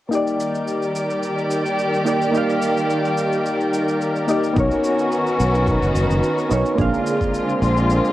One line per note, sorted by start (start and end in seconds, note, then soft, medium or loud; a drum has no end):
0.09 4.52 D#3 medium
0.09 4.52 G3 medium
0.09 2.02 A#3 medium
0.09 2.03 D#4 medium
0.09 4.52 G4 medium
0.09 8.13 A#4 medium
0.09 4.52 D5 medium
0.09 shaker soft
0.13 2.04 G4 medium
0.13 2.05 D5 medium
0.27 shaker soft
0.40 shaker medium
0.55 shaker soft
0.68 shaker soft
0.82 shaker soft
0.96 shaker medium
1.10 shaker soft
1.23 shaker soft
1.38 shaker soft
1.51 shaker medium
1.66 shaker soft
1.79 shaker soft
1.94 shaker soft
2.05 2.30 A#3 medium
2.05 2.31 D#4 medium
2.05 2.31 G4 medium
2.05 2.32 D5 medium
2.05 shaker medium
2.22 shaker soft
2.31 4.24 A#3 medium
2.31 4.25 D#4 medium
2.31 shaker soft
2.35 4.26 G4 medium
2.35 4.27 F5 medium
2.50 shaker soft
2.62 shaker medium
2.77 shaker soft
2.90 shaker soft
3.05 shaker soft
3.17 shaker medium
3.32 shaker soft
3.46 shaker soft
3.60 shaker soft
3.73 shaker medium
3.88 shaker soft
4.01 shaker soft
4.16 shaker soft
4.27 4.53 A#3 medium
4.27 4.53 D#4 medium
4.27 4.54 G4 medium
4.27 4.54 D5 medium
4.27 shaker medium
4.44 shaker soft
4.53 4.68 B1 medium
4.53 6.76 D#3 medium
4.53 6.46 B3 medium
4.53 6.76 B3 medium
4.53 6.76 C#4 medium
4.53 6.47 D#4 medium
4.53 6.76 F#4 medium
4.53 kick loud
4.53 shaker soft
4.58 6.48 A#4 medium
4.58 6.50 C#5 medium
4.71 shaker soft
4.84 shaker medium
4.99 shaker soft
5.12 shaker soft
5.27 shaker soft
5.40 5.77 B1 medium
5.40 shaker medium
5.55 shaker soft
5.68 kick loud
5.68 shaker soft
5.82 5.92 F#1 medium
5.82 shaker soft
5.95 6.07 F#1 medium
5.95 shaker medium
6.11 6.20 F#1 medium
6.11 shaker soft
6.23 shaker soft
6.38 shaker soft
6.50 6.62 B1 medium
6.50 6.75 B3 medium
6.50 6.76 D#4 medium
6.50 6.76 A#4 medium
6.50 6.77 C#5 medium
6.50 shaker medium
6.66 shaker soft
6.75 6.90 A#1 medium
6.75 8.13 D3 medium
6.75 8.13 G#3 medium
6.75 8.13 A#3 medium
6.75 8.13 C4 medium
6.75 8.13 D4 medium
6.75 8.13 F4 medium
6.75 kick loud
6.75 shaker soft
6.80 8.13 G#4 medium
6.80 8.13 F5 medium
6.94 shaker soft
7.07 shaker medium
7.21 kick medium
7.21 shaker soft
7.34 shaker soft
7.49 shaker soft
7.62 7.99 A#1 medium
7.62 shaker medium
7.77 shaker soft
7.90 shaker soft
8.05 shaker soft